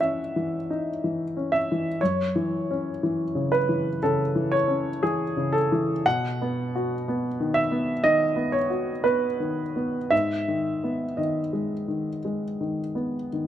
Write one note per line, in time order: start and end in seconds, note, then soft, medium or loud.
0.00 0.36 E3 soft
0.00 0.02 C#4 soft
0.00 0.55 C#4 soft
0.00 0.70 D#4 soft
0.00 1.52 E5 medium
0.00 2.02 F#5 medium
0.36 0.89 E3 soft
0.70 1.22 D#4 soft
1.04 1.55 E3 soft
1.37 1.88 C#4 soft
1.52 2.01 E5 medium
1.72 2.02 E3 soft
2.01 3.98 F#2 soft
2.01 3.51 C#5 medium
2.36 2.88 E3 soft
2.71 3.23 C#4 soft
3.03 3.55 E3 soft
3.35 3.88 C#3 soft
3.52 4.01 B4 medium
3.69 4.21 E3 soft
4.03 4.55 C#3 soft
4.03 4.51 A4 medium
4.36 4.88 E3 soft
4.52 5.01 C#5 medium
4.68 5.21 C#4 soft
5.03 5.57 E3 soft
5.03 5.53 G#4 medium
5.37 5.92 C#3 soft
5.52 6.05 A4 medium
5.72 6.06 E3 soft
6.06 8.00 B2 medium
6.06 7.55 F#5 medium
6.42 6.93 B3 soft
6.75 7.26 F#4 soft
7.08 7.59 B3 soft
7.40 7.92 D#3 soft
7.54 8.04 E5 medium
7.71 8.24 B3 soft
8.04 8.57 D#3 soft
8.04 8.53 D#5 medium
8.36 8.89 B3 soft
8.52 9.03 C#5 medium
8.70 9.24 F#4 soft
9.04 9.60 B3 soft
9.04 10.12 B4 medium
9.40 9.98 D#3 soft
9.76 10.12 B3 soft
10.11 12.18 G#2 soft
10.11 11.17 E5 medium
10.48 11.04 D#3 soft
10.84 11.39 B3 soft
11.17 11.73 D#3 soft
11.17 13.28 D#5 soft
11.53 12.09 G#3 soft
11.88 12.44 D#3 soft
12.25 12.80 G#3 soft
12.61 13.15 D#3 soft
12.95 13.47 B3 soft
13.33 13.47 D#3 soft